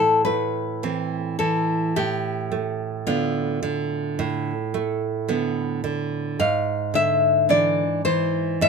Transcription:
0, 0, Header, 1, 3, 480
1, 0, Start_track
1, 0, Tempo, 1125704
1, 834, Time_signature, 4, 2, 24, 8
1, 1786, Tempo, 1107011
1, 3737, End_track
2, 0, Start_track
2, 0, Title_t, "Nylon-string guitar"
2, 0, Program_c, 0, 24
2, 0, Note_on_c, 0, 69, 77
2, 100, Note_off_c, 0, 69, 0
2, 105, Note_on_c, 0, 71, 81
2, 575, Note_off_c, 0, 71, 0
2, 591, Note_on_c, 0, 69, 83
2, 817, Note_off_c, 0, 69, 0
2, 837, Note_on_c, 0, 67, 78
2, 1293, Note_off_c, 0, 67, 0
2, 1307, Note_on_c, 0, 65, 84
2, 2727, Note_off_c, 0, 65, 0
2, 2744, Note_on_c, 0, 77, 92
2, 2965, Note_off_c, 0, 77, 0
2, 2984, Note_on_c, 0, 76, 95
2, 3204, Note_off_c, 0, 76, 0
2, 3223, Note_on_c, 0, 74, 89
2, 3445, Note_off_c, 0, 74, 0
2, 3459, Note_on_c, 0, 72, 93
2, 3688, Note_off_c, 0, 72, 0
2, 3708, Note_on_c, 0, 76, 116
2, 3737, Note_off_c, 0, 76, 0
2, 3737, End_track
3, 0, Start_track
3, 0, Title_t, "Nylon-string guitar"
3, 0, Program_c, 1, 24
3, 0, Note_on_c, 1, 45, 68
3, 111, Note_on_c, 1, 57, 62
3, 355, Note_on_c, 1, 52, 58
3, 356, Note_on_c, 1, 60, 61
3, 498, Note_off_c, 1, 57, 0
3, 579, Note_off_c, 1, 52, 0
3, 579, Note_off_c, 1, 60, 0
3, 595, Note_on_c, 1, 52, 64
3, 820, Note_off_c, 1, 45, 0
3, 836, Note_off_c, 1, 52, 0
3, 837, Note_on_c, 1, 45, 82
3, 1073, Note_on_c, 1, 57, 59
3, 1309, Note_on_c, 1, 50, 60
3, 1311, Note_on_c, 1, 59, 60
3, 1453, Note_off_c, 1, 57, 0
3, 1532, Note_off_c, 1, 50, 0
3, 1533, Note_off_c, 1, 59, 0
3, 1546, Note_on_c, 1, 50, 69
3, 1771, Note_off_c, 1, 45, 0
3, 1786, Note_on_c, 1, 45, 75
3, 1929, Note_off_c, 1, 50, 0
3, 2025, Note_on_c, 1, 57, 65
3, 2261, Note_on_c, 1, 50, 57
3, 2264, Note_on_c, 1, 59, 68
3, 2411, Note_off_c, 1, 57, 0
3, 2487, Note_off_c, 1, 50, 0
3, 2487, Note_off_c, 1, 59, 0
3, 2501, Note_on_c, 1, 50, 63
3, 2727, Note_off_c, 1, 45, 0
3, 2742, Note_off_c, 1, 50, 0
3, 2742, Note_on_c, 1, 44, 73
3, 2978, Note_on_c, 1, 50, 56
3, 3217, Note_on_c, 1, 52, 57
3, 3219, Note_on_c, 1, 62, 60
3, 3361, Note_off_c, 1, 50, 0
3, 3441, Note_off_c, 1, 52, 0
3, 3442, Note_off_c, 1, 62, 0
3, 3461, Note_on_c, 1, 52, 67
3, 3686, Note_off_c, 1, 44, 0
3, 3705, Note_on_c, 1, 44, 79
3, 3737, Note_off_c, 1, 44, 0
3, 3737, Note_off_c, 1, 52, 0
3, 3737, End_track
0, 0, End_of_file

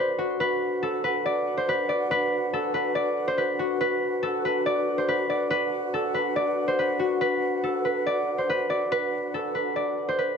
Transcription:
0, 0, Header, 1, 3, 480
1, 0, Start_track
1, 0, Tempo, 425532
1, 453, Time_signature, 4, 2, 24, 8
1, 11697, End_track
2, 0, Start_track
2, 0, Title_t, "Harp"
2, 0, Program_c, 0, 46
2, 0, Note_on_c, 0, 69, 80
2, 0, Note_on_c, 0, 71, 87
2, 0, Note_on_c, 0, 74, 85
2, 208, Note_on_c, 0, 66, 74
2, 448, Note_off_c, 0, 71, 0
2, 452, Note_on_c, 0, 71, 97
2, 927, Note_off_c, 0, 69, 0
2, 932, Note_on_c, 0, 69, 75
2, 1168, Note_off_c, 0, 71, 0
2, 1172, Note_on_c, 0, 71, 77
2, 1412, Note_off_c, 0, 74, 0
2, 1416, Note_on_c, 0, 74, 74
2, 1775, Note_on_c, 0, 72, 75
2, 1843, Note_off_c, 0, 71, 0
2, 1903, Note_on_c, 0, 71, 90
2, 1971, Note_off_c, 0, 72, 0
2, 2127, Note_off_c, 0, 74, 0
2, 2132, Note_on_c, 0, 74, 80
2, 2374, Note_off_c, 0, 71, 0
2, 2378, Note_on_c, 0, 71, 112
2, 2854, Note_off_c, 0, 69, 0
2, 2858, Note_on_c, 0, 69, 82
2, 2957, Note_off_c, 0, 66, 0
2, 3086, Note_off_c, 0, 71, 0
2, 3091, Note_on_c, 0, 71, 73
2, 3324, Note_off_c, 0, 74, 0
2, 3329, Note_on_c, 0, 74, 79
2, 3696, Note_on_c, 0, 72, 83
2, 3763, Note_off_c, 0, 71, 0
2, 3810, Note_on_c, 0, 71, 81
2, 3878, Note_off_c, 0, 72, 0
2, 4051, Note_on_c, 0, 66, 77
2, 4288, Note_off_c, 0, 71, 0
2, 4293, Note_on_c, 0, 71, 102
2, 4763, Note_off_c, 0, 69, 0
2, 4768, Note_on_c, 0, 69, 87
2, 5014, Note_off_c, 0, 71, 0
2, 5019, Note_on_c, 0, 71, 82
2, 5251, Note_off_c, 0, 74, 0
2, 5256, Note_on_c, 0, 74, 81
2, 5617, Note_on_c, 0, 72, 73
2, 5684, Note_off_c, 0, 71, 0
2, 5735, Note_on_c, 0, 71, 90
2, 5803, Note_off_c, 0, 72, 0
2, 5970, Note_off_c, 0, 74, 0
2, 5974, Note_on_c, 0, 74, 75
2, 6204, Note_off_c, 0, 71, 0
2, 6209, Note_on_c, 0, 71, 110
2, 6693, Note_off_c, 0, 69, 0
2, 6698, Note_on_c, 0, 69, 79
2, 6800, Note_off_c, 0, 66, 0
2, 6926, Note_off_c, 0, 71, 0
2, 6930, Note_on_c, 0, 71, 76
2, 7170, Note_off_c, 0, 74, 0
2, 7174, Note_on_c, 0, 74, 82
2, 7532, Note_on_c, 0, 72, 84
2, 7600, Note_off_c, 0, 71, 0
2, 7657, Note_on_c, 0, 71, 82
2, 7725, Note_off_c, 0, 72, 0
2, 7889, Note_on_c, 0, 66, 74
2, 8127, Note_off_c, 0, 71, 0
2, 8132, Note_on_c, 0, 71, 96
2, 8608, Note_off_c, 0, 69, 0
2, 8612, Note_on_c, 0, 69, 76
2, 8848, Note_off_c, 0, 71, 0
2, 8852, Note_on_c, 0, 71, 80
2, 9092, Note_off_c, 0, 74, 0
2, 9097, Note_on_c, 0, 74, 77
2, 9456, Note_on_c, 0, 72, 77
2, 9523, Note_off_c, 0, 71, 0
2, 9582, Note_on_c, 0, 71, 91
2, 9650, Note_off_c, 0, 72, 0
2, 9807, Note_off_c, 0, 74, 0
2, 9811, Note_on_c, 0, 74, 79
2, 10054, Note_off_c, 0, 71, 0
2, 10059, Note_on_c, 0, 71, 112
2, 10533, Note_off_c, 0, 69, 0
2, 10537, Note_on_c, 0, 69, 85
2, 10638, Note_off_c, 0, 66, 0
2, 10765, Note_off_c, 0, 71, 0
2, 10769, Note_on_c, 0, 71, 72
2, 11004, Note_off_c, 0, 74, 0
2, 11008, Note_on_c, 0, 74, 75
2, 11376, Note_on_c, 0, 72, 81
2, 11444, Note_off_c, 0, 71, 0
2, 11489, Note_on_c, 0, 71, 77
2, 11556, Note_off_c, 0, 72, 0
2, 11697, Note_off_c, 0, 69, 0
2, 11697, Note_off_c, 0, 71, 0
2, 11697, Note_off_c, 0, 74, 0
2, 11697, End_track
3, 0, Start_track
3, 0, Title_t, "Flute section"
3, 0, Program_c, 1, 73
3, 0, Note_on_c, 1, 62, 81
3, 0, Note_on_c, 1, 66, 78
3, 0, Note_on_c, 1, 71, 78
3, 192, Note_off_c, 1, 62, 0
3, 414, Note_off_c, 1, 66, 0
3, 414, Note_off_c, 1, 71, 0
3, 451, Note_on_c, 1, 62, 82
3, 451, Note_on_c, 1, 66, 73
3, 451, Note_on_c, 1, 71, 75
3, 451, Note_on_c, 1, 78, 86
3, 4254, Note_off_c, 1, 78, 0
3, 4293, Note_on_c, 1, 78, 87
3, 11623, Note_off_c, 1, 71, 0
3, 11655, Note_off_c, 1, 66, 0
3, 11656, Note_off_c, 1, 62, 0
3, 11684, Note_off_c, 1, 78, 0
3, 11697, End_track
0, 0, End_of_file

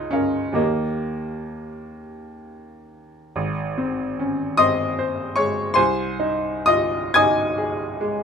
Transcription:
0, 0, Header, 1, 2, 480
1, 0, Start_track
1, 0, Key_signature, -4, "major"
1, 0, Tempo, 934579
1, 303, Time_signature, 6, 3, 24, 8
1, 1271, Tempo, 883652
1, 1751, Tempo, 804290
1, 3191, Tempo, 903614
1, 4151, Tempo, 839161
1, 4524, End_track
2, 0, Start_track
2, 0, Title_t, "Grand piano"
2, 0, Program_c, 0, 0
2, 0, Control_c, 0, 64, 127
2, 0, Note_on_c, 0, 37, 55
2, 0, Note_on_c, 0, 63, 93
2, 0, Note_on_c, 0, 65, 41
2, 54, Note_on_c, 0, 61, 64
2, 58, Note_off_c, 0, 63, 0
2, 64, Note_on_c, 0, 70, 39
2, 65, Note_on_c, 0, 77, 41
2, 204, Note_off_c, 0, 65, 0
2, 268, Note_on_c, 0, 39, 44
2, 270, Note_off_c, 0, 70, 0
2, 273, Note_on_c, 0, 67, 34
2, 278, Note_on_c, 0, 70, 35
2, 280, Note_off_c, 0, 37, 0
2, 281, Note_off_c, 0, 77, 0
2, 281, Note_on_c, 0, 58, 62
2, 286, Note_on_c, 0, 75, 37
2, 296, Note_off_c, 0, 61, 0
2, 313, Control_c, 0, 64, 0
2, 421, Control_c, 0, 64, 127
2, 1021, Note_off_c, 0, 58, 0
2, 1711, Note_off_c, 0, 39, 0
2, 1713, Note_off_c, 0, 67, 0
2, 1716, Note_off_c, 0, 70, 0
2, 1720, Note_off_c, 0, 75, 0
2, 1750, Note_on_c, 0, 32, 63
2, 1759, Control_c, 0, 64, 0
2, 1840, Control_c, 0, 64, 127
2, 2001, Note_on_c, 0, 60, 49
2, 2250, Note_on_c, 0, 61, 45
2, 2391, Note_off_c, 0, 60, 0
2, 2477, Note_on_c, 0, 87, 106
2, 2482, Note_on_c, 0, 75, 75
2, 2485, Note_on_c, 0, 84, 70
2, 2487, Note_on_c, 0, 60, 57
2, 2489, Note_off_c, 0, 61, 0
2, 2723, Note_on_c, 0, 72, 51
2, 2860, Note_off_c, 0, 60, 0
2, 2927, Note_off_c, 0, 75, 0
2, 2928, Note_off_c, 0, 84, 0
2, 2943, Note_on_c, 0, 85, 84
2, 2948, Note_off_c, 0, 87, 0
2, 2948, Note_on_c, 0, 73, 68
2, 2957, Note_on_c, 0, 56, 52
2, 3094, Note_off_c, 0, 72, 0
2, 3166, Note_off_c, 0, 32, 0
2, 3171, Note_off_c, 0, 73, 0
2, 3172, Note_on_c, 0, 84, 99
2, 3181, Note_on_c, 0, 80, 76
2, 3182, Note_on_c, 0, 72, 68
2, 3186, Note_off_c, 0, 85, 0
2, 3186, Note_on_c, 0, 36, 65
2, 3192, Note_off_c, 0, 56, 0
2, 3200, Control_c, 0, 64, 0
2, 3280, Control_c, 0, 64, 127
2, 3417, Note_on_c, 0, 63, 55
2, 3646, Note_off_c, 0, 80, 0
2, 3647, Note_off_c, 0, 72, 0
2, 3662, Note_on_c, 0, 87, 107
2, 3664, Note_off_c, 0, 84, 0
2, 3670, Note_on_c, 0, 75, 81
2, 3674, Note_on_c, 0, 65, 50
2, 3820, Note_off_c, 0, 63, 0
2, 3901, Note_off_c, 0, 75, 0
2, 3914, Note_off_c, 0, 87, 0
2, 3919, Note_on_c, 0, 92, 107
2, 3920, Note_off_c, 0, 65, 0
2, 3923, Note_on_c, 0, 80, 89
2, 3927, Note_on_c, 0, 87, 87
2, 3931, Note_on_c, 0, 63, 60
2, 4152, Note_on_c, 0, 68, 57
2, 4300, Note_off_c, 0, 63, 0
2, 4396, Note_on_c, 0, 56, 56
2, 4524, Note_off_c, 0, 36, 0
2, 4524, Note_off_c, 0, 56, 0
2, 4524, Note_off_c, 0, 68, 0
2, 4524, Note_off_c, 0, 80, 0
2, 4524, Note_off_c, 0, 87, 0
2, 4524, Note_off_c, 0, 92, 0
2, 4524, End_track
0, 0, End_of_file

